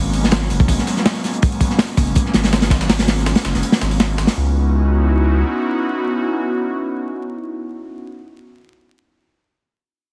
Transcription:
Already playing: sub bass G#1, analog synth pad F#3 G#3 A#3 B3 C#4
0.14 closed hi-hat, open hi-hat
0.24 snare
0.31 snare, closed hi-hat, open hi-hat
0.42 snare
0.50 sub bass F#1, analog synth pad F#3 G#3 A#3 B3 C#4, closed hi-hat, open hi-hat
0.60 sub bass F#1, kick
0.68 sub bass G#1, kick, closed hi-hat, open hi-hat
0.79 snare
0.87 snare, closed hi-hat, open hi-hat
0.97 snare
1.06 snare, closed hi-hat, open hi-hat
1.15 snare, closed hi-hat
1.24 snare, closed hi-hat, open hi-hat
1.33 closed hi-hat
1.42 analog synth pad F#3 G#3 A#3 B3 C#4, kick, closed hi-hat, open hi-hat
1.52 closed hi-hat
1.61 kick, closed hi-hat, open hi-hat
1.70 snare
1.78 snare, closed hi-hat, open hi-hat
1.89 closed hi-hat
1.97 sub bass F#1, analog synth pad F#3 G#3 A#3 B3 C#4, kick, closed hi-hat, open hi-hat
2.07 sub bass F#1, closed hi-hat
2.15 kick, closed hi-hat, open hi-hat
2.26 snare
2.34 sub bass G#1, snare, closed hi-hat, open hi-hat
2.44 snare, open hi-hat
2.53 snare, closed hi-hat, open hi-hat
2.62 snare, open hi-hat
2.70 kick, snare, closed hi-hat, open hi-hat
2.81 snare, closed hi-hat
2.89 analog synth pad F#3 G#3 A#3 B3 C#4, snare, closed hi-hat, open hi-hat
2.99 snare, open hi-hat
3.08 snare, closed hi-hat, open hi-hat
3.18 snare
3.26 snare, closed hi-hat, open hi-hat
3.35 snare, open hi-hat
3.45 sub bass F#1, analog synth pad F#3 G#3 A#3 B3 C#4, snare, closed hi-hat
3.54 sub bass F#1, snare, open hi-hat
3.63 closed hi-hat, open hi-hat
3.72 snare, open hi-hat
3.81 sub bass G#1, snare, closed hi-hat
3.91 analog synth pad F#3 G#3 A#3 B3 C#4, closed hi-hat, open hi-hat
4.00 snare, closed hi-hat, open hi-hat
4.18 sub bass G#1, snare, closed hi-hat, open hi-hat
4.27 snare, closed hi-hat, open hi-hat
4.36 sub bass C#2, analog synth pad B3 C#4 D#4 E4 F#4

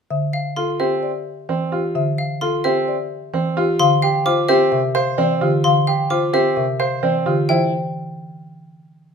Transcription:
0.10 marimba D3 E5
0.33 xylophone F5
0.56 grand piano F4, marimba A4, xylophone C6
0.80 grand piano C4, marimba G4, xylophone E5
1.03 marimba D5
1.49 marimba E3, grand piano C4
1.72 grand piano F4, marimba G4
1.95 marimba D3 E5
2.18 xylophone F5
2.41 grand piano F4, marimba A4, xylophone C6
2.64 grand piano C4, marimba G4, xylophone E5
2.88 marimba D5
3.34 marimba E3, grand piano C4
3.57 grand piano F4, marimba G4
3.79 marimba D3 F5, xylophone C6
4.02 grand piano G4, xylophone F5
4.26 grand piano F4, marimba C5, xylophone D6
4.49 grand piano C4, marimba G4, xylophone E5
4.72 marimba C3 E5
4.95 grand piano C5, xylophone F5
5.18 marimba E3 D5, grand piano C4
5.41 marimba D3 G4, grand piano F4
5.64 marimba D3 F5, xylophone C6
5.87 grand piano G4, xylophone F5
6.10 grand piano F4, marimba C5, xylophone D6
6.33 grand piano C4, marimba G4, xylophone E5
6.57 marimba C3 E5
6.80 grand piano C5, xylophone F5
7.03 marimba E3 D5, grand piano C4
7.26 marimba D3 G4, grand piano F4
7.49 marimba E3 C5, grand piano E4, xylophone G5

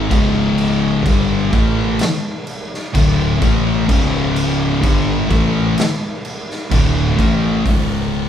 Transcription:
Already playing: distorted electric guitar G#3
0.11 fingered electric bass C#1, distorted electric guitar C#2 G#2 C#3, kick, crash
0.58 crash
1.04 fingered electric bass G1, distorted electric guitar G2 D3 G3, kick, crash
1.52 fingered electric bass A1, distorted electric guitar A2 E3 A3, kick, crash
1.99 snare, crash
2.47 crash
2.74 snare
2.94 fingered electric bass D1, distorted electric guitar D2 A2 D3, kick, crash
3.41 fingered electric bass A1, distorted electric guitar A2 E3 A3, kick, crash
3.89 fingered electric bass C#1, distorted electric guitar C#2 G#2 C#3, kick, crash
4.36 crash
4.83 fingered electric bass G1, distorted electric guitar G2 D3 G3, kick, crash
5.30 fingered electric bass A1, distorted electric guitar A2 E3 A3, kick, crash
5.78 snare, crash
6.25 crash
6.51 snare
6.71 fingered electric bass D1, distorted electric guitar D2 A2 D3, kick, crash
7.17 fingered electric bass A1, distorted electric guitar A2 E3 A3, kick, crash
7.65 fingered electric bass C#1, distorted electric guitar C#2 G#2 C#3, kick, open hi-hat

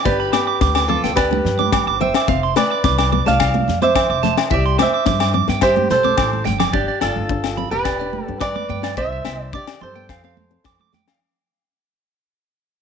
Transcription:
0.05 upright bass G1, nylon-string guitar B3, steel-string acoustic guitar G4 B4, clean electric guitar D5, kick, snare
0.20 clean electric guitar B5
0.33 nylon-string guitar B3, clean electric guitar D6, snare, low agogo
0.47 clean electric guitar D6
0.61 upright bass D2, clean electric guitar D6, kick, snare
0.75 clean electric guitar D6, snare, low agogo
0.88 nylon-string guitar C4, steel-string acoustic guitar F4 A4, clean electric guitar D6, low conga
1.04 upright bass D2, nylon-string guitar B3, clean electric guitar G5, snare
1.16 steel-string acoustic guitar G4 B4, clean electric guitar D5, kick, snare, low agogo
1.31 nylon-string guitar D4, high conga
1.45 upright bass G2, snare, low conga
1.59 nylon-string guitar D4, clean electric guitar D6, high conga
1.72 clean electric guitar D6, kick, snare, low agogo
1.87 upright bass G1, clean electric guitar D6
2.00 nylon-string guitar B3, steel-string acoustic guitar C5 E5, clean electric guitar G5, low conga
2.14 clean electric guitar D6, snare, low agogo
2.28 upright bass F1, nylon-string guitar C4, clean electric guitar F5, kick, snare
2.43 clean electric guitar C6
2.56 nylon-string guitar A3, steel-string acoustic guitar B4 D5, clean electric guitar D6, snare, low agogo
2.71 clean electric guitar D6
2.84 upright bass C2, nylon-string guitar C4, clean electric guitar D6, kick, snare
2.98 clean electric guitar D6, snare, low agogo
3.12 nylon-string guitar B3, clean electric guitar D6, low conga
3.26 upright bass C2, nylon-string guitar A3, steel-string acoustic guitar D5 F5, clean electric guitar A5, snare
3.40 clean electric guitar F5, kick, snare, low agogo
3.54 nylon-string guitar C4, high conga
3.68 upright bass F2, snare, low conga
3.82 nylon-string guitar C4, steel-string acoustic guitar C5 E5, clean electric guitar D6, high conga
3.95 clean electric guitar D6, kick, snare, low agogo
4.10 upright bass F1, clean electric guitar D6
4.23 nylon-string guitar A3, clean electric guitar A5, snare, low conga
4.38 muted clean electric guitar stroke, snare, low agogo
4.50 upright bass C2, nylon-string guitar E4, steel-string acoustic guitar G4 D5, clean electric guitar E5, kick
4.66 clean electric guitar C6
4.79 nylon-string guitar C4, steel-string acoustic guitar C5 E5, clean electric guitar D6, snare, high conga, low agogo
4.94 clean electric guitar D6
5.06 upright bass G2, nylon-string guitar D4, clean electric guitar D6, kick, snare, low conga
5.20 clean electric guitar D6, snare, low agogo
5.34 nylon-string guitar C4, clean electric guitar D6, low conga
5.48 upright bass G2, nylon-string guitar B3, clean electric guitar G5, snare
5.61 steel-string acoustic guitar G4 C5, clean electric guitar E5, kick, snare, low agogo
5.76 nylon-string guitar C4, high conga
5.90 upright bass B1, steel-string acoustic guitar A4 C5, snare, low conga
6.04 nylon-string guitar C4, clean electric guitar D6, high conga
6.17 upright bass A1, clean electric guitar D6, kick, snare, low agogo
6.33 high conga
6.45 upright bass G1, nylon-string guitar A3, clean electric guitar G5, snare, low conga
6.60 clean electric guitar D6, snare, low conga, low agogo
6.73 upright bass G1, nylon-string guitar D4, steel-string acoustic guitar D4 G4, clean electric guitar D5, kick
6.88 clean electric guitar D5
7.01 upright bass G1, steel-string acoustic guitar F4 A4, clean electric guitar D5, snare, low agogo
7.16 upright bass G1, high conga
7.29 nylon-string guitar D4, kick
7.44 snare, low agogo
7.57 nylon-string guitar C4, clean electric guitar B5, low conga
7.71 upright bass E1, nylon-string guitar B3, steel-string acoustic guitar G4 B4, clean electric guitar G5
7.85 clean electric guitar D5, kick, snare, low agogo
8.00 nylon-string guitar D4, clean electric guitar D5
8.13 high conga
8.25 upright bass G2, nylon-string guitar D4, steel-string acoustic guitar A4
8.40 steel-string acoustic guitar B4 D5, clean electric guitar D6, kick, snare, low agogo
8.56 clean electric guitar D6, high conga
8.69 upright bass G2, nylon-string guitar B3, clean electric guitar G5, high conga, low conga
8.83 clean electric guitar D5, snare, low agogo
8.97 upright bass C2, nylon-string guitar C4, steel-string acoustic guitar C5 E5, clean electric guitar E5, kick
9.12 clean electric guitar E5
9.25 upright bass C2, nylon-string guitar B3, clean electric guitar E5, snare, low agogo
9.43 steel-string acoustic guitar D5
9.53 nylon-string guitar D4, steel-string acoustic guitar G4 D5, clean electric guitar D6, kick
9.67 snare, low agogo
9.81 upright bass G2, nylon-string guitar C4, steel-string acoustic guitar A4 C5, clean electric guitar C6, low conga
9.96 nylon-string guitar B3, clean electric guitar G5
10.09 upright bass F2, clean electric guitar F5, kick, snare, low agogo
10.24 nylon-string guitar C4, clean electric guitar F5
10.37 high conga
10.51 nylon-string guitar C4
10.64 upright bass F2, clean electric guitar D6, kick, snare, low agogo
10.80 clean electric guitar D6, high conga
10.92 nylon-string guitar A3, clean electric guitar G5, snare, high conga, low conga
11.08 clean electric guitar F5, snare, low agogo

